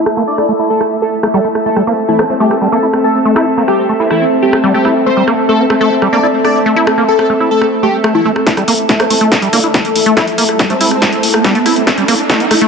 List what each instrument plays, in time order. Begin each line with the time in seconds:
Already playing: synth texture A3 E4, ambient pad A4 E5 A5
0.06 cross-stick
0.17 acid bass A#3
0.27 analog synth lead D5
0.38 cross-stick
0.49 acid bass A3
0.59 acid bass E4
0.70 analog synth lead A4
0.81 cross-stick
1.02 analog synth lead A4
1.23 acid bass A3, cross-stick
1.34 acid bass G3, analog synth lead A4
1.44 acid bass A3
1.55 cross-stick
1.66 acid bass A3, synth texture C4, analog synth lead A4
1.76 acid bass G3, cross-stick
1.87 acid bass A#3
2.08 acid bass A3, analog synth lead E4
2.19 acid bass C4, wobble bass C4, cross-stick
2.30 acid bass A3, wobble bass C4
2.40 acid bass A3, analog synth lead G4
2.51 wobble bass A3, cross-stick
2.62 acid bass G3, wobble bass A3
2.72 acid bass A#3, analog synth lead A4
2.83 acid bass E4
2.93 cross-stick
3.04 analog synth lead A4
3.25 acid bass A3
3.36 acid bass E4, cross-stick
3.57 acid bass A#3
3.68 analog synth lead G4, cross-stick
3.89 acid bass A3
4.00 wobble bass A3, acid bass E4
4.10 wobble bass A3, analog synth lead E4, cross-stick
4.42 analog synth lead G4
4.53 wobble bass C4, cross-stick
4.64 acid bass G3
4.74 acid bass A3, analog synth lead G4
4.85 acid bass E4, cross-stick
5.06 acid bass A3, analog synth lead C5
5.17 acid bass G3
5.27 acid bass A#3, cross-stick
5.49 acid bass A3, analog synth lead A4
5.59 acid bass C4
5.70 acid bass A3, cross-stick
5.81 acid bass A3, analog synth lead A4
6.02 acid bass G3, cross-stick
6.13 acid bass A#3, analog synth lead D5
6.23 acid bass E4
6.45 analog synth lead D5, cross-stick
6.66 acid bass A3
6.76 acid bass E4
6.87 cross-stick
6.98 acid bass A#3
7.08 analog synth lead A4
7.19 cross-stick
7.30 acid bass A3
7.40 acid bass E4
7.51 analog synth lead A4
7.62 cross-stick
7.83 acid bass A3, analog synth lead G4
8.04 acid bass A3, cross-stick
8.15 acid bass A3, analog synth lead E4
8.25 acid bass A3
8.36 cross-stick
8.47 acid bass A3, synth texture A3 E4, kick, snare, closed hi-hat, riser
8.57 acid bass G3, cross-stick, closed hi-hat
8.68 acid bass A#3, open hi-hat
8.79 closed hi-hat
8.89 acid bass A3, kick, snare, closed hi-hat
9.00 acid bass C4, wobble bass C4, cross-stick, closed hi-hat
9.10 acid bass A3, wobble bass C4, open hi-hat
9.21 acid bass A3, closed hi-hat
9.32 kick, cross-stick, snare, closed hi-hat
9.42 acid bass G3, closed hi-hat
9.53 acid bass A#3, wobble bass D4, open hi-hat
9.64 wobble bass D4, acid bass E4, closed hi-hat
9.74 kick, cross-stick, snare, closed hi-hat
9.85 closed hi-hat
9.96 open hi-hat
10.06 acid bass A3, closed hi-hat
10.17 acid bass E4, kick, cross-stick, snare, closed hi-hat
10.27 closed hi-hat
10.38 acid bass A#3, open hi-hat
10.49 cross-stick, closed hi-hat
10.59 kick, snare, closed hi-hat
10.70 acid bass A3, wobble bass C4, closed hi-hat
10.81 acid bass E4, open hi-hat
10.91 cross-stick, closed hi-hat
11.02 kick, snare, closed hi-hat
11.13 closed hi-hat
11.23 open hi-hat
11.34 cross-stick, closed hi-hat
11.44 acid bass G3, kick, snare, closed hi-hat
11.55 acid bass A3, closed hi-hat
11.66 acid bass E4, cross-stick, open hi-hat
11.76 closed hi-hat
11.87 acid bass A3, kick, snare, closed hi-hat
11.98 acid bass G3, closed hi-hat
12.08 acid bass A#3, cross-stick, open hi-hat
12.19 closed hi-hat
12.30 acid bass A3, kick, snare, closed hi-hat
12.40 acid bass C4, closed hi-hat
12.51 acid bass A3, cross-stick, open hi-hat
12.61 acid bass A3, closed hi-hat